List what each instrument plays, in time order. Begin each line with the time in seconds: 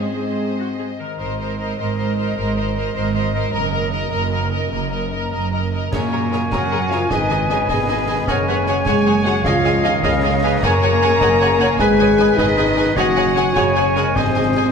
Already playing: cello section G#2, harp G#2 G#3 G#4, french horn section C4, viola section G#4
0.00 violin section C5 D#5
0.18 harp C4
0.39 harp D#4
0.59 viola section F#4, harp G#4
0.79 harp C4, viola section G#4
0.99 harp D#3, viola section A#4
1.19 double bass section G#1, cello section G#2, harp G#2, viola section A#4, violin section C5 D#5
1.38 harp C4, viola section A#4, violin section C5 D#5
1.59 harp D#4, viola section A#4, violin section C5 D#5
1.78 double bass section G#1, cello section G#2, harp C4, viola section A#4, violin section C5 D#5
1.98 harp D#3, viola section A#4, violin section C5 D#5
2.17 harp D#4, viola section A#4, violin section C5 D#5
2.37 double bass section G#1, cello section G#2, harp G#2, viola section A#4, violin section C5 D#5
2.57 harp C4, viola section A#4, violin section C5 D#5
2.76 harp D#4, viola section A#4, violin section C5 D#5
2.95 double bass section G#1, cello section G#2, harp C4, viola section A#4, violin section C5 D#5
3.14 harp D#3, viola section A#4, violin section C5 D#5
3.34 harp D#4, viola section A#4, violin section C5 D#5
3.52 double bass section F#1, cello section F#2, harp F#2, violin section A#4 D#5, viola section A#4
3.72 harp A#3, violin section A#4 D#5, viola section A#4
3.91 harp D#4, violin section A#4 D#5, viola section A#4
4.10 double bass section F#1, cello section F#2, harp A#3, viola section A#4, violin section A#4 D#5
4.31 harp F#3, violin section A#4 D#5, viola section A#4
4.51 harp D#4, violin section A#4 D#5, viola section A#4
4.71 double bass section F#1, cello section F#2, harp F#2, violin section A#4 D#5, viola section A#4
4.91 harp A#3, violin section A#4 D#5, viola section A#4
5.11 harp D#4, violin section A#4 D#5, viola section A#4
5.31 double bass section F#1, cello section F#2, harp A#3, viola section A#4, violin section A#4 D#5
5.52 harp F#3, violin section A#4 D#5, viola section A#4
5.72 harp D#4, violin section A#4 D#5, viola section A#4
5.92 double bass section F#2, harp F#2, cello section A#2, french horn section A#3, viola section G#4, violin section A#4 C#5, oboe C#5, flute G#5, concert bass drum, snare, crash
6.12 harp C#3, viola section G#4, violin section A#4 C#5
6.32 harp F#4, viola section G#4, violin section A#4 C#5, snare
6.51 double bass section F#2, cello section F#3, french horn section F#4, harp G#4, viola section G#4, violin section A#4 C#5 F#5, clarinet A#4, concert bass drum, snare
6.71 viola section G#4, harp A#4, violin section A#4 C#5
6.90 cello section F3, french horn section F4, harp F#4, viola section G#4, violin section A#4 C#5 F5, snare
7.10 double bass section G#1, harp G#2, cello section D#3, french horn section D#4, viola section G#4, clarinet B4, violin section D#5 G#5, oboe D#5, concert bass drum, snare
7.30 harp D#3, viola section G#4, violin section D#5 G#5, snare
7.48 cello section C#3, french horn section C#4, harp D#4, viola section G#4, violin section C#5 D#5 G#5, snare
7.69 double bass section G#1, cello section B2, french horn section B3, harp G#4, clarinet G#4, viola section G#4, violin section B4 D#5 G#5, concert bass drum, snare
7.89 harp D#4, viola section G#4, violin section D#5 G#5
8.08 harp G#3, viola section G#4, violin section D#5 G#5
8.27 double bass section F#1, harp F#2, cello section C#3, french horn section C#4, viola section G#4 C#5, clarinet A#4, violin section C#5 F#5 G#5, oboe C#5, flute G#5, concert bass drum, snare
8.47 harp C#3, viola section G#4 C#5, clarinet B4, violin section F#5 G#5
8.67 harp F#4, viola section G#4 C#5, clarinet C#5, violin section F#5 G#5, snare
8.86 double bass section F#1, cello section G#3, french horn section G#4, viola section G#4 C#5, harp C#5, violin section F#5 G#5, concert bass drum, snare
9.06 harp G#4, viola section G#4 C#5, violin section F#5 G#5
9.25 cello section F#3, harp F#4, french horn section F#4, viola section G#4 C#5, violin section F#5 G#5, snare
9.44 double bass section C#2, timpani C#3, harp C#3, cello section F3, french horn section F4, viola section G#4 D#5, oboe D#5, flute F5, violin section F5 G#5, concert bass drum, snare
9.64 harp G#3, viola section G#4 D#5, violin section F5 G#5, snare
9.83 cello section D#3, french horn section D#4, harp F4, viola section G#4 D#5, violin section D#5 F5 G#5, snare
10.03 double bass section C#2, cello section C#3, french horn section C#4, viola section G#4 D#5, clarinet A#4, violin section C#5 F5 G#5, harp D#5, concert bass drum, snare
10.22 harp G#4, clarinet G#4, viola section G#4 D#5, violin section F5 G#5
10.43 harp F4, viola section G#4 D#5, clarinet B4, violin section F5 G#5
10.62 double bass section F#1, harp F#2, cello section A#3, viola section G#4 C#5, french horn section A#4, clarinet C#5, oboe C#5, violin section F#5 G#5 A#5, flute G#5, concert bass drum, snare, crash
10.82 harp C#3, viola section G#4 C#5, violin section F#5 G#5
11.02 harp F#4, viola section G#4 C#5, violin section F#5 G#5, snare
11.20 double bass section F#1, viola section G#4 C#5, harp C#5, clarinet D#5, violin section F#5 G#5, concert bass drum, snare
11.40 harp G#4, viola section G#4 C#5, clarinet C#5, violin section F#5 G#5
11.59 harp F#4, viola section G#4 C#5, clarinet C#5, violin section F#5 G#5, snare
11.78 double bass section G#1, harp G#2, cello section G#3, viola section G#4 B4, french horn section G#4, oboe B4, clarinet B4, violin section D#5 G#5, concert bass drum, snare
11.99 harp D#3, viola section G#4 B4, clarinet C#5, violin section D#5 G#5, snare
12.18 harp D#4, viola section G#4 B4, clarinet B4, violin section D#5 G#5, snare
12.37 double bass section G#1, cello section D#3, french horn section D#4, viola section G#4 B4, harp B4, violin section D#5 G#5, concert bass drum, snare
12.56 viola section G#4 B4, harp G#4, violin section D#5 G#5
12.76 harp D#4, viola section G#4 B4, violin section D#5 G#5
12.95 double bass section F#1, harp F#2, cello section F#3, french horn section F#4, viola section G#4 C#5, oboe C#5, clarinet D#5, violin section F#5 G#5, flute G#5, concert bass drum, snare
13.16 harp C#3, viola section G#4 C#5, violin section F#5 G#5
13.36 harp F#4, viola section G#4 C#5, violin section F#5 G#5, snare
13.55 double bass section F#1, cello section C#3, french horn section C#4, harp G#4, viola section G#4 C#5, violin section C#5 F#5 G#5, clarinet C#5, concert bass drum, snare
13.75 harp F#4, clarinet G#4, viola section G#4 C#5, violin section F#5 G#5
13.95 harp G#3, viola section G#4 C#5, clarinet A#4, violin section F#5 G#5, snare
14.14 double bass section G#1, harp G#2, timpani G#2, cello section C3, french horn section C4, viola section G#4, violin section C5 D#5 G#5, clarinet C5, oboe D#5, concert bass drum, snare
14.35 harp D#3, viola section G#4, violin section D#5 G#5
14.56 harp D#4, viola section G#4, violin section D#5 G#5